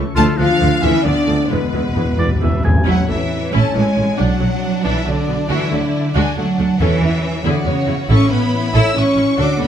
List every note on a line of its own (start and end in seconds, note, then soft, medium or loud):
0.00 0.18 C#3 medium
0.00 0.18 C#4 medium
0.00 0.18 E4 medium
0.00 0.70 A4 medium
0.00 0.18 C#5 medium
0.00 0.18 E5 medium
0.00 0.18 E6 medium
0.06 0.37 A3 medium
0.15 0.24 D2 medium
0.15 0.25 D2 medium
0.15 1.52 D3 medium
0.15 0.24 F3 medium
0.15 0.36 A3 loud
0.15 0.25 A3 medium
0.15 0.39 F4 loud
0.15 0.37 A4 loud
0.15 0.24 A5 loud
0.15 0.23 A5 medium
0.15 0.26 A5 medium
0.27 1.52 D4 medium
0.37 0.47 D2 medium
0.37 0.81 F3 medium
0.37 0.47 F3 medium
0.37 1.37 A3 medium
0.37 0.47 A3 medium
0.37 0.83 D4 medium
0.37 0.81 F4 loud
0.37 0.81 F5 medium
0.37 0.82 F5 medium
0.60 0.69 D2 medium
0.60 0.68 F3 medium
0.60 0.68 A3 medium
0.60 1.26 D5 medium
0.72 1.14 A4 soft
0.81 0.92 D2 medium
0.81 1.04 E3 medium
0.81 0.90 F3 medium
0.81 0.90 A3 medium
0.81 1.03 C#4 medium
0.81 1.05 E4 loud
0.81 1.04 E5 medium
0.81 1.05 E5 medium
0.81 1.06 E5 medium
0.81 1.03 F5 medium
0.93 1.52 D6 medium
1.03 1.13 D2 medium
1.03 1.14 D2 medium
1.03 1.50 D3 medium
1.03 1.13 F3 medium
1.03 1.13 A3 medium
1.03 1.49 B3 medium
1.03 1.49 D4 medium
1.03 1.50 D5 medium
1.03 1.49 D5 medium
1.03 1.50 D5 medium
1.03 1.52 F5 medium
1.16 1.52 A4 medium
1.27 1.36 D2 medium
1.27 1.37 D2 medium
1.27 1.36 F3 soft
1.27 1.35 A3 soft
1.38 1.52 A3 soft
1.47 1.58 E1 medium
1.47 1.56 E2 soft
1.47 1.59 E2 medium
1.47 2.62 B2 medium
1.47 2.88 E3 medium
1.47 2.63 G#3 medium
1.47 1.59 G#3 medium
1.47 2.62 B3 medium
1.47 2.64 B4 medium
1.51 1.59 E3 medium
1.51 2.63 B4 medium
1.57 1.64 E2 soft
1.62 1.72 E2 soft
1.62 2.89 G#3 soft
1.72 1.82 E1 medium
1.72 1.80 E2 soft
1.72 1.81 E2 medium
1.72 1.82 E3 soft
1.72 1.82 G#3 soft
1.72 2.75 E4 soft
1.81 1.87 E2 soft
1.81 2.88 B4 soft
1.88 1.95 E2 soft
1.95 2.04 E1 medium
1.95 2.04 E2 medium
1.95 2.03 E2 soft
1.95 2.05 E3 soft
1.95 2.05 G#3 soft
1.95 2.64 G#4 soft
2.05 2.11 E2 medium
2.05 2.52 E5 soft
2.12 2.19 E2 medium
2.18 2.28 E1 medium
2.18 2.26 E2 medium
2.18 2.27 E2 medium
2.18 2.28 E3 soft
2.18 2.27 G#3 soft
2.18 2.29 D5 medium
2.18 2.41 B5 soft
2.28 2.34 E2 medium
2.28 2.88 G#5 soft
2.35 2.42 E2 medium
2.41 2.50 E1 medium
2.41 2.50 E2 soft
2.41 2.50 E2 medium
2.41 2.50 E3 soft
2.41 2.49 G#3 soft
2.41 2.64 E5 medium
2.41 2.89 B5 soft
2.51 2.59 E2 medium
2.51 3.74 E5 soft
2.60 2.66 E2 medium
2.60 2.71 E3 soft
2.60 2.71 G#3 soft
2.64 2.73 E1 medium
2.64 2.72 E2 medium
2.64 2.73 E2 medium
2.64 2.89 G#4 soft
2.64 2.86 G#5 medium
2.74 2.82 E2 medium
2.74 3.31 E4 soft
2.85 2.94 A1 medium
2.85 4.21 A2 medium
2.85 2.95 F#3 medium
2.85 3.06 C#4 medium
2.85 3.06 E4 medium
2.89 3.08 F#5 medium
3.08 3.17 A1 soft
3.08 3.16 E3 soft
3.08 3.52 E3 medium
3.08 3.16 A3 medium
3.08 4.21 C#4 soft
3.08 3.53 E5 medium
3.32 4.21 E4 soft
3.52 3.62 A1 medium
3.52 3.75 A3 medium
3.52 3.73 C#4 medium
3.52 4.15 C#4 medium
3.52 3.73 E4 medium
3.52 4.21 C#5 medium
3.52 3.76 A5 medium
3.75 3.84 A1 soft
3.75 3.83 E3 soft
3.75 4.18 G#3 medium
3.75 3.83 A3 medium
3.75 4.21 E5 medium
3.75 4.19 G#5 medium
3.96 4.05 A1 soft
3.96 4.05 A3 soft
3.96 4.04 C#4 soft
3.96 4.21 A4 soft
4.17 4.28 B1 medium
4.17 5.52 B2 medium
4.17 4.85 F#3 medium
4.17 4.39 D4 medium
4.17 5.50 D4 medium
4.17 4.85 F#5 medium
4.40 4.49 B1 soft
4.40 4.48 F#3 soft
4.40 6.81 F#3 soft
4.63 5.70 D4 soft
4.84 4.94 B1 medium
4.84 5.06 E3 medium
4.84 5.05 D4 medium
4.84 5.28 F#4 soft
4.84 5.06 E5 medium
5.05 5.15 B1 soft
5.05 5.49 D3 medium
5.05 5.13 F#3 medium
5.05 6.14 D5 medium
5.05 5.51 D5 medium
5.27 5.36 B1 soft
5.27 5.35 B3 soft
5.27 6.82 F#4 medium
5.48 5.57 D2 medium
5.48 6.82 D3 medium
5.48 5.71 E3 medium
5.48 5.69 D4 medium
5.48 6.15 E4 medium
5.48 5.69 F#4 medium
5.48 5.72 E5 medium
5.70 5.80 D2 soft
5.70 6.14 D3 medium
5.70 5.79 F#3 medium
5.70 5.78 A3 medium
5.70 6.16 D5 medium
5.94 7.21 A4 soft
6.14 6.23 D2 medium
6.14 6.22 G#3 medium
6.14 6.79 D4 medium
6.14 6.35 D4 medium
6.14 6.35 F#4 medium
6.14 6.57 D5 soft
6.14 6.38 G#5 medium
6.36 6.45 D2 soft
6.36 6.79 F#3 medium
6.36 6.46 F#3 soft
6.36 6.45 A3 medium
6.36 6.79 F#5 medium
6.36 7.46 A5 soft
6.58 6.66 D2 soft
6.58 6.67 A3 soft
6.58 6.67 D4 medium
6.58 6.82 D5 soft
6.80 7.41 E2 medium
6.80 6.88 E2 medium
6.80 7.43 E3 medium
6.80 7.44 E3 medium
6.80 7.00 C#4 medium
6.80 7.02 C#4 medium
6.80 7.00 A4 medium
6.80 7.45 E5 medium
7.01 7.09 E2 soft
7.01 7.10 E3 soft
7.01 7.24 B3 medium
7.01 7.21 C#4 soft
7.01 7.10 C#4 soft
7.22 7.46 C#4 soft
7.22 7.31 C#4 medium
7.22 7.46 A4 soft
7.44 7.52 E2 medium
7.44 7.53 D3 medium
7.44 8.11 E3 medium
7.44 7.65 E4 medium
7.44 8.08 F#4 medium
7.44 7.65 G#4 medium
7.44 7.67 D5 medium
7.64 7.73 E2 soft
7.64 8.09 C#3 medium
7.64 7.72 G#3 medium
7.64 7.72 B3 soft
7.64 7.87 E4 soft
7.64 8.10 C#5 medium
7.87 7.95 E2 soft
7.87 7.95 B3 soft
7.87 7.95 E4 medium
7.87 8.52 E4 soft
7.87 8.12 G#4 soft
8.08 8.16 A1 medium
8.08 9.41 A2 medium
8.08 8.71 A2 medium
8.08 8.31 C#4 medium
8.08 8.29 E4 medium
8.08 9.39 E4 medium
8.08 8.30 A4 medium
8.08 8.32 C#6 medium
8.30 8.39 A1 soft
8.30 8.38 B3 soft
8.30 8.75 B3 medium
8.30 8.39 C#4 medium
8.30 9.41 C#4 soft
8.30 8.73 B5 medium
8.53 9.41 E4 soft
8.74 8.82 A1 medium
8.74 8.94 E4 medium
8.74 8.96 E4 medium
8.74 8.94 A4 medium
8.74 9.16 C#5 soft
8.74 8.96 E6 medium
8.96 9.04 A1 soft
8.96 9.04 B3 medium
8.96 9.04 C#4 soft
8.96 9.39 C#4 medium
8.96 9.41 E5 soft
8.96 9.40 C#6 medium
9.17 9.25 A1 soft
9.17 9.25 C#4 soft
9.17 9.25 E4 soft
9.17 9.40 C#5 soft
9.37 9.47 D2 medium
9.37 9.67 D3 medium
9.37 9.60 D4 medium
9.37 9.58 F#4 medium
9.37 9.67 F#4 medium
9.37 9.58 A4 medium
9.42 9.62 D6 medium
9.59 9.67 D2 soft
9.59 9.67 A3 soft
9.59 9.67 B3 medium
9.59 9.67 D4 soft
9.64 9.67 B5 medium